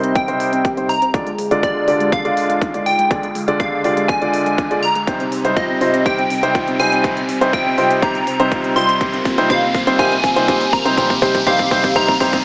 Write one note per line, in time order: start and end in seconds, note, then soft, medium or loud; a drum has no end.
0.00 0.25 C3 medium
0.00 1.10 C3 medium
0.00 0.25 G3 medium
0.00 1.10 G3 medium
0.00 0.12 C4 medium
0.00 0.25 D#4 medium
0.00 1.10 D#4 medium
0.00 1.10 G4 medium
0.00 0.25 C5 loud
0.00 0.17 D#5 medium
0.00 closed hi-hat medium
0.00 riser medium
0.15 0.89 G5 loud
0.15 kick loud
0.15 closed hi-hat medium
0.28 0.74 C3 medium
0.28 0.74 G3 medium
0.28 0.36 C4 medium
0.28 0.74 D#4 medium
0.28 0.74 C5 loud
0.28 closed hi-hat soft
0.40 open hi-hat loud
0.53 0.61 C4 medium
0.53 closed hi-hat medium
0.65 0.73 G4 medium
0.65 kick loud
0.65 closed hi-hat medium
0.77 0.91 C3 medium
0.77 0.91 G3 medium
0.77 0.85 C4 medium
0.77 0.91 D#4 medium
0.77 0.91 C5 medium
0.77 closed hi-hat soft
0.89 1.12 A#5 loud
0.89 open hi-hat medium
1.02 1.10 C4 medium
1.02 closed hi-hat medium
1.14 5.03 D3 medium
1.14 1.28 D3 medium
1.14 5.03 G#3 medium
1.14 1.28 G#3 medium
1.14 5.03 F4 medium
1.14 1.28 F4 medium
1.14 5.03 G#4 medium
1.14 1.22 G#4 loud
1.14 1.28 D5 medium
1.14 kick loud
1.14 closed hi-hat medium
1.27 1.35 G#3 medium
1.27 closed hi-hat soft
1.38 1.47 G#3 medium
1.38 open hi-hat loud
1.51 1.85 D3 medium
1.51 1.59 G#3 medium
1.51 1.85 G#3 medium
1.51 1.85 F4 medium
1.51 1.85 D5 loud
1.51 closed hi-hat medium
1.63 1.72 G4 medium
1.63 2.14 D5 medium
1.63 kick loud
1.63 closed hi-hat medium
1.76 1.84 G#3 medium
1.88 2.22 D3 medium
1.88 2.22 G#3 medium
1.88 2.22 F4 medium
1.88 1.96 G4 medium
1.88 2.22 D5 loud
1.88 open hi-hat medium
2.00 2.08 G#3 medium
2.00 closed hi-hat soft
2.12 2.86 F5 loud
2.12 kick loud
2.12 closed hi-hat medium
2.25 2.71 D3 loud
2.25 2.33 G#3 medium
2.25 2.71 G#3 medium
2.25 2.71 F4 medium
2.25 2.71 D5 loud
2.25 closed hi-hat soft
2.37 open hi-hat loud
2.50 2.58 G#3 medium
2.50 closed hi-hat medium
2.61 2.70 D#4 medium
2.61 kick loud
2.61 closed hi-hat medium
2.74 2.88 D3 medium
2.74 2.88 G#3 medium
2.74 2.82 G#3 medium
2.74 2.88 F4 medium
2.74 2.88 D5 medium
2.74 closed hi-hat soft
2.86 3.09 G5 loud
2.86 open hi-hat medium
2.99 3.07 G#3 medium
2.99 closed hi-hat soft
3.11 3.25 D3 medium
3.11 3.25 G#3 medium
3.11 3.25 F4 medium
3.11 3.19 G#4 loud
3.11 3.25 D5 loud
3.11 kick loud
3.11 closed hi-hat medium
3.23 3.31 G#3 medium
3.23 closed hi-hat soft
3.35 3.44 G#3 medium
3.35 open hi-hat loud
3.48 3.82 D3 loud
3.48 3.56 G#3 medium
3.48 3.82 G#3 medium
3.48 3.81 F4 medium
3.48 3.82 D5 loud
3.48 closed hi-hat soft
3.60 3.68 G4 medium
3.60 4.10 F5 medium
3.60 kick loud
3.60 closed hi-hat medium
3.72 3.81 G#3 medium
3.84 4.19 D3 medium
3.84 4.19 G#3 medium
3.84 4.19 F4 medium
3.84 3.93 G4 medium
3.84 4.19 D5 loud
3.84 open hi-hat medium
3.97 4.05 G#3 medium
3.97 closed hi-hat soft
4.08 4.84 G#5 loud
4.08 kick loud
4.08 closed hi-hat medium
4.22 4.68 D3 medium
4.22 4.68 G#3 medium
4.22 4.30 G#3 medium
4.22 4.68 F4 medium
4.22 4.68 D5 loud
4.22 closed hi-hat soft
4.34 open hi-hat loud
4.46 4.54 G#3 medium
4.46 closed hi-hat soft
4.58 4.67 D4 medium
4.58 kick loud
4.58 closed hi-hat medium
4.71 4.84 D3 medium
4.71 4.84 G#3 medium
4.71 4.79 G#3 medium
4.71 4.84 F4 medium
4.71 4.84 D5 medium
4.71 closed hi-hat soft
4.83 5.07 A#5 loud
4.83 open hi-hat loud
4.95 5.04 G#3 medium
4.95 closed hi-hat soft
5.07 12.41 C3 medium
5.07 5.21 C3 medium
5.07 8.97 G3 medium
5.07 5.21 G3 medium
5.07 8.97 D#4 medium
5.07 5.21 D#4 medium
5.07 5.16 G4 medium
5.07 12.41 C5 medium
5.07 5.21 C5 medium
5.07 kick loud
5.07 closed hi-hat medium
5.20 5.28 C4 medium
5.20 closed hi-hat soft
5.32 5.41 C4 medium
5.32 open hi-hat loud
5.45 5.78 C3 medium
5.45 5.78 G3 medium
5.45 5.53 C4 medium
5.45 5.78 D#4 medium
5.45 5.78 C5 medium
5.45 closed hi-hat soft
5.56 5.65 F4 medium
5.56 6.07 D#5 medium
5.56 kick loud
5.56 closed hi-hat medium
5.69 5.77 C4 medium
5.81 6.04 C3 medium
5.81 6.04 G3 medium
5.81 6.04 D#4 medium
5.81 5.90 F4 medium
5.81 6.04 C5 medium
5.81 open hi-hat medium
5.94 6.02 C4 medium
5.94 closed hi-hat soft
6.06 6.20 C3 medium
6.06 6.20 G3 medium
6.06 6.20 D#4 medium
6.06 6.14 G4 medium
6.06 6.20 C5 medium
6.06 6.81 G5 loud
6.06 kick loud
6.06 closed hi-hat medium
6.18 6.26 C4 medium
6.18 closed hi-hat soft
6.30 6.39 C4 medium
6.30 open hi-hat loud
6.43 6.77 C3 medium
6.43 6.77 G3 medium
6.43 6.51 C4 medium
6.43 6.77 D#4 medium
6.43 6.77 C5 loud
6.43 closed hi-hat medium
6.55 6.64 F4 medium
6.55 kick loud
6.55 closed hi-hat medium
6.68 6.76 C4 medium
6.68 closed hi-hat soft
6.79 7.02 C3 medium
6.79 7.02 G3 medium
6.79 7.02 D#4 medium
6.79 6.88 F4 medium
6.79 7.02 C5 medium
6.79 7.04 G#5 loud
6.79 open hi-hat medium
6.92 7.00 C4 medium
6.92 closed hi-hat medium
7.04 7.18 C3 medium
7.04 7.18 G3 medium
7.04 7.18 D#4 medium
7.04 7.13 G4 medium
7.04 7.18 C5 medium
7.04 kick loud
7.04 closed hi-hat medium
7.17 7.25 C4 medium
7.17 closed hi-hat soft
7.29 7.37 C4 medium
7.29 open hi-hat loud
7.41 7.75 C3 medium
7.41 7.75 G3 medium
7.41 7.49 C4 medium
7.41 7.75 D#4 medium
7.41 7.75 C5 loud
7.41 closed hi-hat medium
7.53 7.62 F4 medium
7.53 7.99 G5 medium
7.53 kick loud
7.53 closed hi-hat medium
7.66 7.74 C4 medium
7.78 8.01 C3 medium
7.78 8.01 G3 medium
7.78 8.01 D#4 medium
7.78 7.86 F4 medium
7.78 8.01 C5 medium
7.78 open hi-hat medium
7.90 7.99 C4 medium
7.90 closed hi-hat medium
8.02 8.16 C3 medium
8.02 8.16 G3 medium
8.02 8.16 D#4 medium
8.02 8.11 G4 loud
8.02 8.16 C5 loud
8.02 8.72 A#5 loud
8.02 kick loud
8.02 closed hi-hat medium
8.15 8.23 C4 medium
8.15 closed hi-hat soft
8.27 8.36 C4 medium
8.27 open hi-hat loud
8.40 8.73 C3 loud
8.40 8.73 G3 medium
8.40 8.48 C4 medium
8.40 8.73 D#4 medium
8.40 8.73 C5 loud
8.40 closed hi-hat soft
8.52 8.60 F4 medium
8.52 kick loud
8.52 closed hi-hat medium
8.64 8.72 C4 medium
8.64 closed hi-hat soft
8.76 8.99 C3 medium
8.76 8.99 G3 medium
8.76 8.99 D#4 medium
8.76 8.85 F4 medium
8.76 8.99 C5 loud
8.76 8.99 C6 loud
8.76 open hi-hat medium
8.89 8.97 C4 medium
8.89 closed hi-hat medium
9.01 9.15 C3 medium
9.01 9.15 G3 medium
9.01 12.42 A#3 medium
9.01 9.15 D#4 medium
9.01 10.96 F4 medium
9.01 9.09 G4 medium
9.01 9.15 C5 loud
9.01 kick loud
9.01 closed hi-hat medium
9.13 9.22 C4 medium
9.13 closed hi-hat soft
9.25 9.34 C4 medium
9.25 kick loud
9.25 open hi-hat loud
9.38 9.48 C3 loud
9.38 9.48 G3 medium
9.38 9.46 C4 medium
9.38 9.48 D#4 medium
9.38 9.48 C5 loud
9.38 closed hi-hat medium
9.50 9.64 C3 medium
9.50 9.64 G3 medium
9.50 9.64 D#4 medium
9.50 9.59 G4 loud
9.50 9.64 C5 loud
9.50 10.00 F5 medium
9.50 kick loud
9.50 closed hi-hat medium
9.63 9.71 C4 medium
9.74 9.83 C4 medium
9.74 kick loud
9.74 open hi-hat medium
9.87 9.97 C3 loud
9.87 9.97 G3 medium
9.87 9.95 C4 medium
9.87 9.97 D#4 medium
9.87 9.97 C5 loud
9.87 closed hi-hat medium
9.99 10.13 C3 medium
9.99 10.13 G3 medium
9.99 10.13 D#4 medium
9.99 10.08 G4 loud
9.99 10.13 C5 loud
9.99 10.75 G#5 loud
9.99 kick loud
9.99 closed hi-hat medium
10.12 10.20 C4 medium
10.12 closed hi-hat soft
10.24 10.32 C4 medium
10.24 kick loud
10.24 open hi-hat loud
10.36 10.46 C3 loud
10.36 10.46 G3 medium
10.36 10.45 C4 medium
10.36 10.46 D#4 medium
10.36 10.46 C5 loud
10.36 closed hi-hat medium
10.48 10.62 C3 medium
10.48 10.62 G3 medium
10.48 10.62 D#4 medium
10.48 10.57 G4 loud
10.48 10.62 C5 loud
10.48 kick loud
10.48 closed hi-hat medium
10.61 10.69 C4 medium
10.61 closed hi-hat soft
10.73 10.82 C4 medium
10.73 10.98 A#5 loud
10.73 kick loud
10.73 open hi-hat medium
10.85 10.96 C3 loud
10.85 10.96 G3 medium
10.85 10.94 C4 medium
10.85 10.96 D#4 medium
10.85 10.96 C5 loud
10.85 closed hi-hat medium
10.97 11.12 C3 medium
10.97 11.12 G3 medium
10.97 11.12 D#4 medium
10.97 12.44 G4 medium
10.97 11.06 G4 loud
10.97 11.12 C5 loud
10.97 kick loud
10.97 closed hi-hat medium
11.10 11.18 C4 medium
11.10 kick medium
11.10 closed hi-hat soft
11.22 11.36 C3 medium
11.22 11.36 G3 medium
11.22 11.36 D#4 medium
11.22 11.31 G4 loud
11.22 11.36 C5 loud
11.22 kick loud
11.22 open hi-hat loud
11.35 11.43 C4 medium
11.35 kick medium
11.35 closed hi-hat medium
11.47 11.61 C3 medium
11.47 11.61 G3 medium
11.47 11.61 D#4 medium
11.47 11.55 G4 loud
11.47 11.61 C5 loud
11.47 11.98 F5 medium
11.47 kick loud
11.47 closed hi-hat medium
11.59 11.67 C4 medium
11.59 kick medium
11.59 closed hi-hat soft
11.71 11.85 C3 medium
11.71 11.85 G3 medium
11.71 11.85 D#4 medium
11.71 11.80 G4 loud
11.71 11.85 C5 loud
11.71 kick loud
11.71 open hi-hat medium
11.84 11.92 C4 medium
11.84 kick loud
11.84 closed hi-hat medium
11.96 12.10 C3 medium
11.96 12.10 G3 medium
11.96 12.10 D#4 medium
11.96 12.04 G4 loud
11.96 12.10 C5 loud
11.96 12.45 A#5 loud
11.96 kick loud
11.96 closed hi-hat medium
11.96 reverse cymbal medium
12.08 12.17 C4 medium
12.08 kick loud
12.08 closed hi-hat soft
12.20 12.34 C3 medium
12.20 12.34 G3 medium
12.20 12.34 D#4 medium
12.20 12.29 G4 loud
12.20 12.34 C5 loud
12.20 kick loud
12.20 open hi-hat loud
12.33 12.41 C4 medium
12.33 kick medium
12.33 closed hi-hat medium